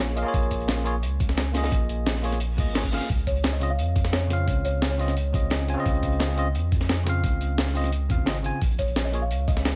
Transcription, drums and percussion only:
0.17 closed hi-hat medium
0.34 kick loud
0.34 closed hi-hat medium
0.42 closed hi-hat soft
0.51 kick medium
0.51 closed hi-hat medium
0.60 closed hi-hat soft
0.68 snare loud
0.68 closed hi-hat medium
0.77 snare soft
0.85 closed hi-hat medium
1.03 closed hi-hat medium
1.20 kick loud
1.20 closed hi-hat loud
1.20 closed hi-hat medium
1.29 snare soft
1.37 snare loud
1.37 closed hi-hat medium
1.54 snare loud
1.54 snare soft
1.54 closed hi-hat medium
1.54 closed hi-hat loud
1.63 snare loud
1.63 closed hi-hat medium
1.72 kick loud
1.72 closed hi-hat medium
1.89 closed hi-hat loud
1.89 closed hi-hat medium
2.06 snare loud
2.06 closed hi-hat medium
2.15 snare medium
2.24 snare soft
2.24 closed hi-hat loud
2.24 open hi-hat medium
2.32 snare soft
2.32 closed hi-hat soft
2.40 closed hi-hat medium
2.58 kick loud
2.58 closed hi-hat loud
2.58 closed hi-hat medium
2.75 snare loud
2.75 closed hi-hat medium
2.84 kick medium
2.92 snare loud
2.92 closed hi-hat medium
2.92 closed hi-hat loud
3.01 snare soft
3.10 kick loud
3.10 closed hi-hat medium
3.18 closed hi-hat soft
3.27 kick medium
3.27 closed hi-hat loud
3.27 closed hi-hat medium
3.36 closed hi-hat soft
3.44 snare loud
3.44 closed hi-hat medium
3.52 snare soft
3.61 closed hi-hat loud
3.61 closed hi-hat medium
3.79 closed hi-hat medium
3.96 kick loud
3.96 closed hi-hat medium
4.04 snare soft
4.13 snare loud
4.13 closed hi-hat medium
4.30 snare medium
4.30 closed hi-hat medium
4.30 closed hi-hat loud
4.48 kick loud
4.48 closed hi-hat medium
4.65 closed hi-hat medium
4.82 snare loud
4.82 closed hi-hat medium
4.91 snare soft
4.99 snare soft
4.99 closed hi-hat loud
4.99 open hi-hat medium
5.08 snare soft
5.08 closed hi-hat soft
5.17 closed hi-hat medium
5.34 kick loud
5.34 closed hi-hat medium
5.50 snare loud
5.50 closed hi-hat medium
5.68 closed hi-hat loud
5.68 closed hi-hat medium
5.86 kick loud
5.86 closed hi-hat medium
5.94 closed hi-hat soft
6.03 kick medium
6.03 closed hi-hat medium
6.12 closed hi-hat soft
6.20 snare loud
6.20 closed hi-hat medium
6.30 snare soft
6.38 closed hi-hat medium
6.55 closed hi-hat medium
6.72 kick loud
6.72 closed hi-hat medium
6.80 snare soft
6.89 snare loud
6.89 closed hi-hat medium
7.07 snare medium
7.07 closed hi-hat medium
7.24 kick loud
7.24 closed hi-hat medium
7.41 closed hi-hat medium
7.58 snare loud
7.58 closed hi-hat medium
7.67 snare medium
7.75 snare soft
7.75 closed hi-hat medium
7.75 open hi-hat medium
7.84 snare soft
7.84 closed hi-hat soft
7.92 closed hi-hat medium
8.10 kick loud
8.10 closed hi-hat medium
8.26 snare loud
8.26 closed hi-hat medium
8.44 closed hi-hat medium
8.62 kick loud
8.62 closed hi-hat medium
8.71 closed hi-hat soft
8.78 kick medium
8.78 closed hi-hat medium
8.88 closed hi-hat soft
8.96 snare loud
8.96 closed hi-hat medium
9.05 snare soft
9.13 closed hi-hat medium
9.31 closed hi-hat medium
9.31 closed hi-hat loud
9.48 kick loud
9.48 closed hi-hat medium
9.57 snare soft
9.65 snare loud
9.65 closed hi-hat medium

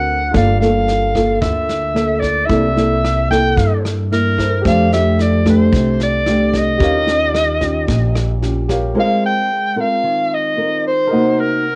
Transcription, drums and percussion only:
0.34 kick medium
0.34 cross-stick medium
0.34 snare soft
0.62 snare soft
0.88 snare soft
1.15 kick soft
1.15 cross-stick medium
1.15 snare soft
1.42 kick medium
1.42 snare soft
1.69 snare soft
1.96 cross-stick medium
1.96 snare soft
2.23 kick soft
2.23 snare soft
2.50 kick medium
2.50 snare soft
2.77 snare soft
3.04 cross-stick medium
3.04 snare soft
3.31 kick soft
3.31 snare soft
3.57 kick medium
3.57 snare soft
3.85 cross-stick medium
3.85 snare soft
4.12 snare soft
4.38 kick soft
4.38 snare soft
4.65 kick medium
4.65 cross-stick medium
4.65 snare soft
4.92 snare soft
5.19 snare soft
5.46 kick soft
5.46 cross-stick medium
5.46 snare soft
5.73 kick medium
5.73 snare soft
6.00 snare soft
6.26 cross-stick medium
6.26 snare soft
6.54 kick soft
6.54 snare soft
6.80 kick medium
6.80 snare soft
7.07 snare soft
7.34 cross-stick medium
7.34 snare soft
7.61 kick soft
7.61 snare soft
7.88 kick medium
7.88 snare soft
8.15 cross-stick medium
8.15 snare soft
8.42 snare soft
8.69 kick soft
8.69 snare soft

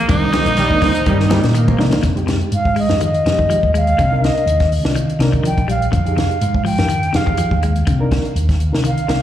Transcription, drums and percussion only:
0.09 kick loud
0.09 closed hi-hat medium
0.33 snare medium
0.33 closed hi-hat medium
0.33 high conga loud
0.46 closed hi-hat soft
0.46 high conga medium
0.57 snare soft
0.57 closed hi-hat medium
0.71 kick medium
0.82 kick medium
0.82 snare soft
0.82 open hi-hat medium
0.82 low conga medium
0.95 closed hi-hat medium
1.06 kick medium
1.06 closed hi-hat medium
1.20 snare soft
1.30 snare medium
1.30 closed hi-hat soft
1.30 high conga loud
1.44 snare medium
1.44 closed hi-hat soft
1.55 closed hi-hat medium
1.68 kick medium
1.68 high conga medium
1.79 snare medium
1.79 high conga medium
1.93 snare medium
1.93 low conga medium
2.03 kick medium
2.03 snare soft
2.03 closed hi-hat medium
2.17 closed hi-hat soft
2.28 snare medium
2.28 closed hi-hat medium
2.41 closed hi-hat soft
2.52 closed hi-hat medium
2.65 kick medium
2.76 open hi-hat medium
2.89 snare medium
2.89 closed hi-hat soft
3.01 closed hi-hat medium
3.14 closed hi-hat soft
3.26 snare medium
3.26 closed hi-hat soft
3.39 kick medium
3.50 closed hi-hat medium
3.63 kick medium
3.75 closed hi-hat soft
3.87 closed hi-hat soft
3.99 kick medium
3.99 closed hi-hat medium
4.24 snare medium
4.24 closed hi-hat soft
4.37 closed hi-hat soft
4.47 closed hi-hat medium
4.60 kick medium
4.60 snare soft
4.60 closed hi-hat soft
4.72 open hi-hat medium
4.85 snare medium
4.96 closed hi-hat medium
5.10 closed hi-hat soft
5.20 snare medium
5.20 closed hi-hat medium
5.33 kick medium
5.33 closed hi-hat soft
5.45 closed hi-hat medium
5.58 kick medium
5.58 closed hi-hat soft
5.69 closed hi-hat medium
5.82 closed hi-hat soft
5.93 kick medium
5.93 closed hi-hat medium
6.06 closed hi-hat soft
6.18 snare medium
6.18 closed hi-hat soft
6.31 closed hi-hat soft
6.42 closed hi-hat medium
6.55 kick medium
6.66 open hi-hat medium
6.78 snare medium
6.78 closed hi-hat soft
6.90 closed hi-hat medium
7.03 closed hi-hat soft
7.14 snare medium
7.14 closed hi-hat medium
7.27 kick medium
7.37 closed hi-hat medium
7.51 kick medium
7.63 closed hi-hat soft
7.76 closed hi-hat soft
7.87 kick medium
7.87 closed hi-hat medium
8.11 kick medium
8.11 snare medium
8.11 closed hi-hat soft
8.25 closed hi-hat soft
8.36 closed hi-hat medium
8.49 kick medium
8.49 snare soft
8.49 closed hi-hat soft
8.60 closed hi-hat soft
8.75 snare medium
8.85 closed hi-hat medium
8.98 closed hi-hat soft
9.09 snare medium
9.09 closed hi-hat soft

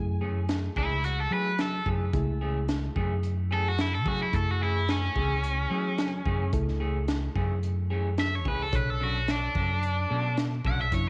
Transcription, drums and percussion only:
0.49 snare loud
0.49 closed hi-hat medium
0.76 kick medium
1.04 closed hi-hat medium
1.58 snare loud
1.58 closed hi-hat medium
1.86 kick medium
2.13 kick loud
2.13 closed hi-hat medium
2.68 snare loud
2.68 closed hi-hat medium
2.96 kick medium
3.23 closed hi-hat medium
3.78 snare loud
3.78 closed hi-hat medium
4.06 kick loud
4.33 kick loud
4.33 closed hi-hat medium
4.88 snare loud
4.88 closed hi-hat medium
5.16 kick medium
5.43 closed hi-hat medium
5.98 snare loud
5.98 closed hi-hat medium
6.26 kick medium
6.53 kick loud
6.53 closed hi-hat medium
6.68 snare soft
7.08 snare loud
7.08 closed hi-hat medium
7.36 kick medium
7.63 closed hi-hat medium
8.18 snare loud
8.18 closed hi-hat medium
8.45 kick medium
8.73 kick loud
8.73 closed hi-hat medium
9.28 snare loud
9.28 closed hi-hat medium
9.55 kick medium
9.83 closed hi-hat medium
10.37 snare loud
10.37 closed hi-hat medium
10.65 kick medium
10.92 kick loud
10.92 closed hi-hat medium

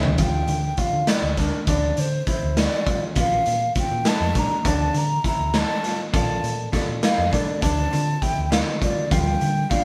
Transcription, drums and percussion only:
0.03 floor tom medium
0.18 kick loud
0.18 closed hi-hat medium
0.47 closed hi-hat medium
0.77 kick medium
0.77 closed hi-hat medium
1.07 snare loud
1.07 closed hi-hat medium
1.37 kick medium
1.37 snare soft
1.37 closed hi-hat medium
1.67 kick loud
1.67 closed hi-hat medium
1.97 closed hi-hat medium
2.27 kick medium
2.27 closed hi-hat soft
2.57 snare loud
2.57 closed hi-hat medium
2.86 kick medium
2.86 closed hi-hat medium
3.15 kick medium
3.15 closed hi-hat medium
3.46 closed hi-hat medium
3.75 kick medium
3.75 closed hi-hat medium
4.05 snare loud
4.05 closed hi-hat medium
4.35 kick medium
4.35 closed hi-hat medium
4.65 kick loud
4.65 closed hi-hat medium
4.94 closed hi-hat medium
5.24 kick medium
5.24 closed hi-hat medium
5.54 snare loud
5.54 closed hi-hat medium
5.84 snare soft
5.84 closed hi-hat medium
6.14 kick loud
6.14 closed hi-hat medium
6.44 closed hi-hat medium
6.73 kick medium
6.73 snare soft
6.73 closed hi-hat medium
7.03 snare loud
7.03 closed hi-hat medium
7.33 kick medium
7.33 closed hi-hat medium
7.62 kick medium
7.62 closed hi-hat medium
7.93 closed hi-hat medium
8.22 kick medium
8.22 closed hi-hat medium
8.52 snare loud
8.52 closed hi-hat medium
8.82 kick medium
8.82 closed hi-hat medium
9.11 kick loud
9.11 closed hi-hat medium
9.41 closed hi-hat medium
9.71 kick medium
9.71 closed hi-hat medium

